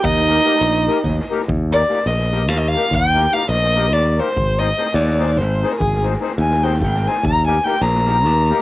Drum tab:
SD |-oooooo-o-oooo|--o-ooooo-o-oo|--o-ooooo-o-oo|--o-ooooo-o-oo|
BD |o---------o---|o-------------|o-------------|o-------------|

SD |-ooooooooooooo|--o-ooooo-o-oo|
BD |o---------o---|o-------------|